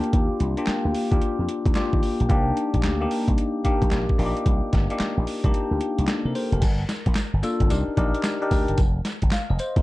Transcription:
0.00 0.57 A#3 medium
0.00 0.58 D4 medium
0.00 0.58 F4 medium
0.00 0.59 G4 loud
0.00 closed hi-hat soft
0.13 0.27 D#2 loud
0.13 kick loud
0.13 closed hi-hat medium
0.40 0.54 C2 loud
0.40 closed hi-hat medium
0.57 0.88 A#3 medium
0.57 0.89 D4 medium
0.57 0.89 F4 medium
0.57 0.89 G4 medium
0.57 closed hi-hat medium
0.67 muted slap bass stroke soft
0.67 snare loud
0.67 clap medium
0.67 closed hi-hat medium
0.85 0.92 D2 medium
0.94 open hi-hat medium
1.11 1.19 D#2 medium
1.11 1.48 A#3 medium
1.11 1.48 D4 medium
1.11 1.49 F4 medium
1.11 1.49 G4 medium
1.11 kick loud
1.11 closed hi-hat medium
1.22 closed hi-hat medium
1.39 1.47 F2 medium
1.49 closed hi-hat medium
1.66 1.73 D#2 medium
1.66 kick loud
1.66 closed hi-hat medium
1.75 2.09 A#3 loud
1.75 2.09 D4 medium
1.75 2.10 F4 medium
1.75 2.10 G4 loud
1.75 snare loud
1.75 clap medium
1.75 closed hi-hat medium
1.93 2.01 D#3 medium
1.93 kick medium
2.03 open hi-hat medium
2.20 2.28 A#1 loud
2.20 closed hi-hat soft
2.29 2.51 C2 loud
2.29 2.74 A#3 loud
2.29 2.74 D4 medium
2.29 2.74 D#4 medium
2.29 2.74 G4 loud
2.29 kick loud
2.29 closed hi-hat medium
2.57 closed hi-hat medium
2.74 2.82 A#1 loud
2.74 kick medium
2.74 closed hi-hat medium
2.83 3.05 D2 medium
2.83 snare loud
2.83 clap medium
2.83 closed hi-hat medium
3.00 3.37 A#3 medium
3.00 3.38 D4 medium
3.00 3.38 D#4 medium
3.00 3.38 G4 medium
3.11 open hi-hat medium
3.28 3.36 C2 medium
3.28 kick loud
3.28 closed hi-hat medium
3.38 closed hi-hat medium
3.64 3.98 A#3 medium
3.64 3.99 D4 medium
3.64 3.99 D#4 medium
3.64 3.99 G4 loud
3.64 muted slap bass stroke medium
3.64 kick medium
3.64 closed hi-hat medium
3.82 3.90 A#1 loud
3.82 kick loud
3.82 closed hi-hat medium
3.91 4.05 A#1 medium
3.91 snare loud
3.91 clap medium
3.91 closed hi-hat medium
4.09 kick medium
4.19 4.32 A#1 medium
4.19 4.63 A#3 medium
4.19 4.63 D4 medium
4.19 4.63 D#4 medium
4.19 4.28 F4 medium
4.19 open hi-hat medium
4.26 4.67 G4 medium
4.37 closed hi-hat soft
4.46 4.60 C2 loud
4.46 kick loud
4.46 closed hi-hat medium
4.73 4.87 G1 loud
4.73 kick loud
4.73 snare medium
4.73 closed hi-hat medium
4.90 5.21 A#3 medium
4.90 5.21 D4 medium
4.90 5.21 D#4 medium
4.90 5.22 G4 medium
4.90 closed hi-hat medium
4.99 muted slap bass stroke soft
4.99 snare loud
4.99 clap medium
4.99 closed hi-hat medium
5.17 5.25 A#1 medium
5.27 open hi-hat medium
5.44 5.52 C2 medium
5.44 5.81 A#3 medium
5.44 5.81 D4 medium
5.44 5.81 D#4 medium
5.44 5.82 G4 medium
5.44 kick loud
5.44 closed hi-hat medium
5.54 closed hi-hat medium
5.71 5.79 D2 medium
5.81 closed hi-hat medium
5.98 6.06 C2 medium
5.98 closed hi-hat medium
6.07 6.25 A4 medium
6.07 snare loud
6.07 clap medium
6.07 closed hi-hat medium
6.25 6.33 C3 loud
6.25 6.35 A#4 medium
6.35 6.52 C5 medium
6.35 open hi-hat medium
6.52 6.60 F1 medium
6.52 6.78 A#4 medium
6.52 closed hi-hat medium
6.62 6.83 G1 loud
6.62 kick loud
6.62 closed hi-hat medium
6.62 crash medium
6.62 tambourine medium
6.89 snare medium
6.89 closed hi-hat medium
6.89 tambourine medium
7.06 7.14 A#1 loud
7.06 kick medium
7.06 closed hi-hat medium
7.15 snare loud
7.15 clap medium
7.15 closed hi-hat medium
7.15 tambourine loud
7.33 7.41 G1 medium
7.43 7.62 A#3 loud
7.43 7.62 D4 loud
7.43 7.63 F4 medium
7.43 7.63 A4 loud
7.43 closed hi-hat medium
7.43 tambourine medium
7.60 7.68 G1 medium
7.60 kick loud
7.60 closed hi-hat medium
7.70 7.84 C2 loud
7.70 7.89 D4 medium
7.70 7.89 D#4 medium
7.70 7.90 G4 medium
7.70 7.90 A#4 medium
7.70 closed hi-hat medium
7.70 tambourine medium
7.88 muted slap bass stroke soft
7.97 8.11 A#1 loud
7.97 8.22 D4 medium
7.97 8.22 D#4 medium
7.97 8.22 G4 medium
7.97 8.23 A#4 loud
7.97 kick medium
7.97 closed hi-hat medium
8.14 closed hi-hat medium
8.23 snare loud
8.23 clap medium
8.23 closed hi-hat medium
8.23 tambourine loud
8.42 8.78 D4 loud
8.42 8.78 D#4 medium
8.42 8.78 G4 medium
8.42 8.79 A#4 loud
8.51 8.65 D2 loud
8.51 kick medium
8.51 open hi-hat medium
8.51 tambourine medium
8.68 8.76 G1 medium
8.68 closed hi-hat medium
8.78 8.99 F1 loud
8.78 kick loud
8.78 closed hi-hat medium
8.78 tambourine medium
9.05 snare medium
9.05 closed hi-hat medium
9.05 tambourine medium
9.22 9.30 G1 medium
9.22 kick loud
9.22 closed hi-hat medium
9.31 9.49 F5 medium
9.31 snare loud
9.31 clap medium
9.31 closed hi-hat medium
9.31 tambourine medium
9.50 9.57 F1 loud
9.50 9.59 D#5 medium
9.59 9.76 C5 medium
9.59 closed hi-hat medium
9.59 tambourine medium
9.76 9.82 D#2 medium
9.76 9.82 A#4 medium
9.76 kick loud
9.76 closed hi-hat medium

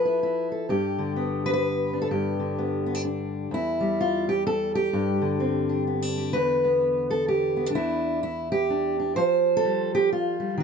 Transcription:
0.00 0.67 F3 medium
0.00 0.51 B4 loud
0.05 0.22 E4 soft
0.23 0.68 E4 soft
0.52 0.69 A4 soft
0.69 2.08 G2 medium
0.69 1.45 G4 medium
0.99 2.38 D3 medium
1.16 2.58 B3 soft
1.46 1.52 B4 loud
1.53 2.01 B4 loud
1.93 2.09 D4 medium
2.02 2.11 A4 medium
2.11 3.50 G2 medium
2.11 3.52 G4 medium
2.39 3.52 D3 medium
2.58 2.85 B3 soft
2.86 2.95 B3 soft
2.95 3.04 D4 soft
3.05 3.50 D4 soft
3.51 4.93 E2 medium
3.51 4.28 E4 medium
3.80 5.21 G3 medium
4.01 4.29 F4 loud
4.29 4.46 G4 loud
4.47 4.75 A4 loud
4.75 6.16 G4 medium
4.93 6.32 G2 medium
5.22 7.75 D3 medium
5.40 6.32 C4 soft
5.69 5.87 D4 medium
5.87 6.02 B3 soft
6.02 6.35 D4 soft
6.17 6.33 G4 soft
6.33 7.74 E2 medium
6.33 7.10 B4 loud
6.64 7.55 B3 soft
7.10 7.28 A4 medium
7.28 7.75 G4 medium
7.57 7.66 B3 soft
7.66 7.69 D4 soft
7.66 8.22 D4 medium
7.75 9.16 E2 medium
7.75 8.22 E4 loud
8.23 8.51 E4 medium
8.52 9.16 G4 loud
8.70 8.98 D4 soft
9.00 9.15 D4 soft
9.16 10.56 F3 medium
9.16 10.01 C5 loud
9.57 9.94 A4 loud
9.65 10.39 G3 soft
9.95 10.12 G4 loud
10.13 10.59 F4 medium
10.40 10.58 G3 soft
10.58 10.63 D#3 medium
10.58 10.63 F#4 medium

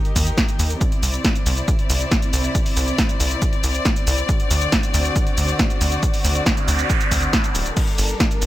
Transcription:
0.00 0.77 D#3 medium
0.00 0.77 D#4 medium
0.00 0.77 G4 medium
0.00 0.77 A#4 medium
0.05 closed hi-hat soft
0.16 0.32 D#2 medium
0.16 kick medium
0.16 open hi-hat loud
0.16 shaker medium
0.27 closed hi-hat soft
0.27 shaker soft
0.38 kick loud
0.38 snare loud
0.38 closed hi-hat medium
0.38 shaker soft
0.49 closed hi-hat medium
0.49 shaker soft
0.59 0.76 D#2 medium
0.59 open hi-hat loud
0.59 shaker medium
0.70 closed hi-hat medium
0.70 shaker soft
0.81 4.25 C3 medium
0.81 7.73 C4 medium
0.81 4.25 E4 medium
0.81 7.73 D5 medium
0.81 kick loud
0.81 closed hi-hat medium
0.81 shaker soft
0.92 closed hi-hat soft
1.03 1.19 C2 loud
1.03 open hi-hat loud
1.03 shaker medium
1.14 closed hi-hat soft
1.14 shaker soft
1.25 kick loud
1.25 snare loud
1.25 closed hi-hat medium
1.25 shaker soft
1.35 closed hi-hat soft
1.35 shaker soft
1.46 1.63 C2 loud
1.46 open hi-hat loud
1.46 shaker medium
1.57 closed hi-hat medium
1.57 shaker soft
1.68 kick loud
1.68 closed hi-hat medium
1.68 shaker soft
1.79 closed hi-hat medium
1.90 2.06 C2 medium
1.90 open hi-hat loud
1.90 shaker medium
2.01 closed hi-hat medium
2.01 shaker soft
2.12 kick loud
2.12 snare loud
2.12 closed hi-hat medium
2.12 shaker soft
2.22 closed hi-hat medium
2.22 shaker soft
2.33 2.50 C2 medium
2.33 open hi-hat loud
2.33 shaker medium
2.44 closed hi-hat medium
2.44 shaker soft
2.55 kick loud
2.55 closed hi-hat medium
2.55 shaker soft
2.66 open hi-hat medium
2.66 shaker soft
2.77 2.93 C2 loud
2.77 open hi-hat loud
2.77 shaker medium
2.88 closed hi-hat medium
2.88 shaker soft
2.98 kick loud
2.98 snare loud
2.98 closed hi-hat medium
2.98 shaker soft
3.09 closed hi-hat medium
3.09 shaker soft
3.20 3.37 C2 loud
3.20 open hi-hat loud
3.20 shaker medium
3.31 closed hi-hat medium
3.31 shaker soft
3.42 kick loud
3.42 closed hi-hat medium
3.42 shaker soft
3.53 closed hi-hat medium
3.64 3.80 C2 medium
3.64 open hi-hat loud
3.64 shaker medium
3.75 closed hi-hat medium
3.75 shaker soft
3.85 kick loud
3.85 snare loud
3.85 closed hi-hat medium
3.85 shaker soft
3.96 closed hi-hat medium
3.96 shaker soft
4.07 4.24 C2 medium
4.07 open hi-hat loud
4.07 shaker medium
4.18 closed hi-hat medium
4.18 shaker soft
4.29 7.73 D3 medium
4.29 7.73 F#4 medium
4.29 kick loud
4.29 closed hi-hat medium
4.29 shaker soft
4.40 closed hi-hat medium
4.51 4.67 D2 loud
4.51 open hi-hat loud
4.51 shaker medium
4.62 closed hi-hat medium
4.62 shaker soft
4.72 kick loud
4.72 snare loud
4.72 closed hi-hat medium
4.72 shaker soft
4.83 closed hi-hat medium
4.83 shaker soft
4.94 5.11 D2 loud
4.94 open hi-hat loud
4.94 shaker medium
5.05 closed hi-hat medium
5.05 shaker soft
5.16 kick loud
5.16 closed hi-hat medium
5.16 shaker soft
5.27 closed hi-hat medium
5.38 5.54 D2 medium
5.38 open hi-hat loud
5.38 shaker medium
5.48 closed hi-hat medium
5.48 shaker soft
5.59 kick loud
5.59 snare loud
5.59 closed hi-hat medium
5.59 shaker soft
5.70 closed hi-hat medium
5.70 shaker soft
5.81 5.98 D2 medium
5.81 open hi-hat loud
5.81 shaker medium
5.92 closed hi-hat medium
5.92 shaker soft
6.03 kick loud
6.03 closed hi-hat medium
6.03 noise sweep medium
6.03 shaker soft
6.14 open hi-hat medium
6.14 shaker soft
6.25 6.41 D2 loud
6.25 open hi-hat loud
6.25 shaker medium
6.35 closed hi-hat medium
6.35 shaker soft
6.46 kick loud
6.46 snare loud
6.46 closed hi-hat medium
6.46 shaker soft
6.57 closed hi-hat medium
6.57 shaker soft
6.68 6.85 D2 loud
6.68 open hi-hat loud
6.68 shaker medium
6.79 closed hi-hat medium
6.79 shaker soft
6.90 kick loud
6.90 closed hi-hat medium
6.90 shaker soft
7.01 closed hi-hat medium
7.01 shaker soft
7.12 7.28 D2 medium
7.12 kick medium
7.12 open hi-hat loud
7.12 shaker medium
7.22 closed hi-hat medium
7.22 shaker soft
7.33 kick loud
7.33 snare loud
7.33 closed hi-hat medium
7.33 shaker soft
7.44 closed hi-hat medium
7.44 shaker soft
7.55 7.71 D1 medium
7.55 open hi-hat loud
7.55 shaker medium
7.66 closed hi-hat medium
7.66 shaker soft
7.77 8.46 G3 medium
7.77 8.46 D4 medium
7.77 8.46 A4 medium
7.77 8.46 A#4 medium
7.77 kick loud
7.77 closed hi-hat medium
7.77 crash medium
7.77 shaker soft
7.88 closed hi-hat medium
7.98 8.15 G1 loud
7.98 open hi-hat loud
7.98 shaker medium
8.09 closed hi-hat medium
8.09 shaker soft
8.20 kick loud
8.20 snare loud
8.20 closed hi-hat medium
8.20 shaker soft
8.31 closed hi-hat medium
8.31 shaker soft
8.42 8.46 G1 loud
8.42 open hi-hat loud
8.42 shaker medium

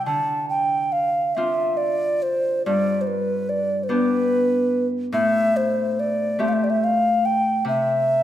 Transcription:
0.00 0.11 C3 medium
0.00 0.11 G3 soft
0.00 0.90 E4 soft
0.00 1.10 G4 soft
0.00 1.05 D5 soft
0.00 1.15 E5 medium
0.00 1.19 G5 soft
0.06 2.70 D3 soft
0.06 0.46 A5 medium
0.49 0.94 G5 medium
0.92 1.36 F5 medium
1.35 3.95 C4 soft
1.35 3.89 D4 soft
1.35 3.90 F4 soft
1.35 1.78 E5 medium
1.77 2.24 D5 medium
2.22 2.65 C5 medium
2.66 5.18 G2 medium
2.66 3.03 D5 medium
3.01 3.09 C5 medium
3.07 3.51 B4 medium
3.49 3.85 D5 medium
3.83 3.90 C5 medium
3.88 6.45 B3 soft
3.88 6.70 D4 soft
3.88 6.25 G4 medium
3.88 4.87 B4 medium
5.12 7.70 A2 medium
5.12 5.58 E5 loud
5.56 6.01 C5 medium
5.99 6.42 D5 medium
6.39 8.23 A3 soft
6.39 8.23 C4 soft
6.39 8.23 G4 medium
6.39 6.50 E5 medium
6.48 6.54 F5 medium
6.53 6.65 E5 medium
6.64 6.71 D5 medium
6.70 6.85 E5 medium
6.84 7.27 F5 medium
7.25 7.66 G5 medium
7.65 8.23 C3 medium
7.65 8.23 E5 medium

